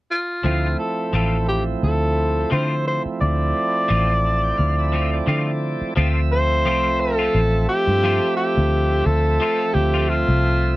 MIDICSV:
0, 0, Header, 1, 6, 480
1, 0, Start_track
1, 0, Key_signature, -1, "minor"
1, 0, Tempo, 691244
1, 305, Time_signature, 4, 2, 24, 8
1, 7475, End_track
2, 0, Start_track
2, 0, Title_t, "Tonewheel organ"
2, 0, Program_c, 0, 16
2, 308, Note_on_c, 0, 53, 68
2, 310, Note_on_c, 0, 57, 60
2, 316, Note_on_c, 0, 60, 61
2, 320, Note_on_c, 0, 64, 75
2, 2944, Note_on_c, 0, 81, 59
2, 3068, Note_off_c, 0, 81, 0
2, 3077, Note_on_c, 0, 79, 61
2, 3178, Note_off_c, 0, 79, 0
2, 3178, Note_on_c, 0, 77, 60
2, 3305, Note_off_c, 0, 77, 0
2, 3325, Note_on_c, 0, 76, 64
2, 3545, Note_off_c, 0, 76, 0
2, 3564, Note_on_c, 0, 74, 63
2, 3662, Note_off_c, 0, 74, 0
2, 3670, Note_on_c, 0, 77, 59
2, 3791, Note_off_c, 0, 77, 0
2, 3802, Note_on_c, 0, 74, 62
2, 4120, Note_off_c, 0, 53, 0
2, 4121, Note_off_c, 0, 57, 0
2, 4124, Note_off_c, 0, 74, 0
2, 4125, Note_off_c, 0, 60, 0
2, 4126, Note_off_c, 0, 64, 0
2, 4136, Note_on_c, 0, 53, 71
2, 4140, Note_on_c, 0, 57, 67
2, 4141, Note_on_c, 0, 60, 63
2, 4146, Note_on_c, 0, 76, 81
2, 7475, Note_off_c, 0, 53, 0
2, 7475, Note_off_c, 0, 57, 0
2, 7475, Note_off_c, 0, 60, 0
2, 7475, Note_off_c, 0, 76, 0
2, 7475, End_track
3, 0, Start_track
3, 0, Title_t, "Tenor saxophone"
3, 0, Program_c, 1, 66
3, 75, Note_on_c, 1, 65, 68
3, 522, Note_off_c, 1, 65, 0
3, 549, Note_on_c, 1, 69, 73
3, 771, Note_off_c, 1, 69, 0
3, 796, Note_on_c, 1, 69, 70
3, 1014, Note_off_c, 1, 69, 0
3, 1029, Note_on_c, 1, 67, 72
3, 1137, Note_off_c, 1, 67, 0
3, 1273, Note_on_c, 1, 69, 91
3, 1722, Note_off_c, 1, 69, 0
3, 1752, Note_on_c, 1, 72, 83
3, 1973, Note_off_c, 1, 72, 0
3, 1996, Note_on_c, 1, 72, 79
3, 2102, Note_off_c, 1, 72, 0
3, 2228, Note_on_c, 1, 74, 108
3, 3879, Note_off_c, 1, 74, 0
3, 4389, Note_on_c, 1, 72, 112
3, 4863, Note_on_c, 1, 69, 103
3, 4874, Note_off_c, 1, 72, 0
3, 5333, Note_off_c, 1, 69, 0
3, 5338, Note_on_c, 1, 67, 101
3, 5793, Note_off_c, 1, 67, 0
3, 5809, Note_on_c, 1, 67, 90
3, 6288, Note_on_c, 1, 69, 110
3, 6299, Note_off_c, 1, 67, 0
3, 6761, Note_on_c, 1, 67, 89
3, 6771, Note_off_c, 1, 69, 0
3, 7004, Note_on_c, 1, 65, 98
3, 7015, Note_off_c, 1, 67, 0
3, 7475, Note_off_c, 1, 65, 0
3, 7475, End_track
4, 0, Start_track
4, 0, Title_t, "Clean electric guitar"
4, 0, Program_c, 2, 27
4, 302, Note_on_c, 2, 53, 74
4, 307, Note_on_c, 2, 57, 72
4, 313, Note_on_c, 2, 60, 70
4, 319, Note_on_c, 2, 65, 81
4, 457, Note_off_c, 2, 53, 0
4, 460, Note_off_c, 2, 57, 0
4, 463, Note_off_c, 2, 60, 0
4, 466, Note_off_c, 2, 65, 0
4, 785, Note_on_c, 2, 53, 71
4, 791, Note_on_c, 2, 57, 65
4, 796, Note_on_c, 2, 60, 76
4, 799, Note_on_c, 2, 65, 78
4, 939, Note_off_c, 2, 53, 0
4, 942, Note_off_c, 2, 57, 0
4, 944, Note_off_c, 2, 60, 0
4, 946, Note_off_c, 2, 65, 0
4, 1737, Note_on_c, 2, 53, 63
4, 1742, Note_on_c, 2, 57, 72
4, 1748, Note_on_c, 2, 60, 81
4, 1751, Note_on_c, 2, 65, 74
4, 1895, Note_off_c, 2, 53, 0
4, 1898, Note_off_c, 2, 57, 0
4, 1901, Note_off_c, 2, 60, 0
4, 1902, Note_off_c, 2, 65, 0
4, 2696, Note_on_c, 2, 53, 71
4, 2700, Note_on_c, 2, 57, 70
4, 2706, Note_on_c, 2, 60, 73
4, 2710, Note_on_c, 2, 65, 76
4, 2855, Note_off_c, 2, 53, 0
4, 2857, Note_off_c, 2, 57, 0
4, 2860, Note_off_c, 2, 60, 0
4, 2862, Note_off_c, 2, 65, 0
4, 3418, Note_on_c, 2, 53, 58
4, 3426, Note_on_c, 2, 57, 58
4, 3431, Note_on_c, 2, 60, 59
4, 3440, Note_on_c, 2, 65, 64
4, 3576, Note_off_c, 2, 53, 0
4, 3580, Note_off_c, 2, 57, 0
4, 3583, Note_off_c, 2, 60, 0
4, 3587, Note_off_c, 2, 65, 0
4, 3655, Note_on_c, 2, 53, 75
4, 3662, Note_on_c, 2, 57, 75
4, 3666, Note_on_c, 2, 60, 83
4, 3670, Note_on_c, 2, 65, 93
4, 3814, Note_off_c, 2, 53, 0
4, 3818, Note_off_c, 2, 57, 0
4, 3820, Note_off_c, 2, 60, 0
4, 3822, Note_off_c, 2, 65, 0
4, 4136, Note_on_c, 2, 53, 71
4, 4143, Note_on_c, 2, 57, 71
4, 4147, Note_on_c, 2, 60, 83
4, 4151, Note_on_c, 2, 65, 77
4, 4295, Note_off_c, 2, 53, 0
4, 4299, Note_off_c, 2, 57, 0
4, 4300, Note_off_c, 2, 60, 0
4, 4302, Note_off_c, 2, 65, 0
4, 4621, Note_on_c, 2, 53, 82
4, 4626, Note_on_c, 2, 57, 78
4, 4628, Note_on_c, 2, 60, 81
4, 4633, Note_on_c, 2, 65, 86
4, 4777, Note_off_c, 2, 53, 0
4, 4780, Note_off_c, 2, 57, 0
4, 4781, Note_off_c, 2, 60, 0
4, 4783, Note_off_c, 2, 65, 0
4, 4991, Note_on_c, 2, 65, 51
4, 5005, Note_on_c, 2, 60, 44
4, 5011, Note_on_c, 2, 57, 43
4, 5129, Note_off_c, 2, 65, 0
4, 5135, Note_off_c, 2, 60, 0
4, 5138, Note_off_c, 2, 57, 0
4, 5577, Note_on_c, 2, 53, 80
4, 5583, Note_on_c, 2, 57, 83
4, 5586, Note_on_c, 2, 60, 73
4, 5591, Note_on_c, 2, 65, 83
4, 5735, Note_off_c, 2, 53, 0
4, 5738, Note_off_c, 2, 57, 0
4, 5739, Note_off_c, 2, 60, 0
4, 5742, Note_off_c, 2, 65, 0
4, 6528, Note_on_c, 2, 53, 75
4, 6536, Note_on_c, 2, 57, 76
4, 6539, Note_on_c, 2, 60, 81
4, 6543, Note_on_c, 2, 65, 88
4, 6690, Note_off_c, 2, 53, 0
4, 6694, Note_off_c, 2, 57, 0
4, 6695, Note_off_c, 2, 60, 0
4, 6697, Note_off_c, 2, 65, 0
4, 6902, Note_on_c, 2, 65, 58
4, 6911, Note_on_c, 2, 60, 46
4, 6920, Note_on_c, 2, 57, 47
4, 7042, Note_off_c, 2, 65, 0
4, 7047, Note_off_c, 2, 60, 0
4, 7051, Note_off_c, 2, 57, 0
4, 7475, End_track
5, 0, Start_track
5, 0, Title_t, "Fingered electric bass"
5, 0, Program_c, 3, 33
5, 308, Note_on_c, 3, 38, 76
5, 519, Note_off_c, 3, 38, 0
5, 786, Note_on_c, 3, 33, 77
5, 1210, Note_off_c, 3, 33, 0
5, 1271, Note_on_c, 3, 38, 84
5, 1694, Note_off_c, 3, 38, 0
5, 1751, Note_on_c, 3, 50, 70
5, 2078, Note_off_c, 3, 50, 0
5, 2233, Note_on_c, 3, 38, 85
5, 2443, Note_off_c, 3, 38, 0
5, 2711, Note_on_c, 3, 33, 87
5, 3133, Note_off_c, 3, 33, 0
5, 3188, Note_on_c, 3, 38, 84
5, 3612, Note_off_c, 3, 38, 0
5, 3662, Note_on_c, 3, 50, 77
5, 3993, Note_off_c, 3, 50, 0
5, 4146, Note_on_c, 3, 38, 88
5, 4624, Note_off_c, 3, 38, 0
5, 4624, Note_on_c, 3, 36, 86
5, 5049, Note_off_c, 3, 36, 0
5, 5101, Note_on_c, 3, 33, 95
5, 5315, Note_off_c, 3, 33, 0
5, 5468, Note_on_c, 3, 43, 74
5, 5684, Note_off_c, 3, 43, 0
5, 5954, Note_on_c, 3, 38, 79
5, 6262, Note_off_c, 3, 38, 0
5, 6294, Note_on_c, 3, 38, 83
5, 6510, Note_off_c, 3, 38, 0
5, 6770, Note_on_c, 3, 38, 69
5, 7105, Note_off_c, 3, 38, 0
5, 7142, Note_on_c, 3, 36, 92
5, 7475, Note_off_c, 3, 36, 0
5, 7475, End_track
6, 0, Start_track
6, 0, Title_t, "Muted fingered electric bass strokes"
6, 2122, Note_on_c, 9, 29, 34
6, 2192, Note_off_c, 9, 29, 0
6, 4038, Note_on_c, 9, 29, 34
6, 4107, Note_off_c, 9, 29, 0
6, 7475, End_track
0, 0, End_of_file